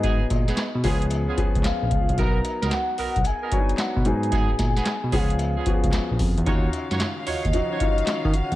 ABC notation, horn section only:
X:1
M:4/4
L:1/16
Q:"Swing 16ths" 1/4=112
K:Dbmix
V:1 name="Horn section"
[CEGA] z2 [CEGA] z2 [CDFA] z2 [CDFA] z6 | [=B,^D^F^A] z2 [B,DFA] z2 [B,DFA] z2 [B,DFA] z6 | [CEGA] z2 [CEGA] z2 [CDFA] z2 [CDFA] z6 | [K:Ebm] [EFGd] z2 [EFGd] z2 [EFGd] z2 [EFGd] z6 |]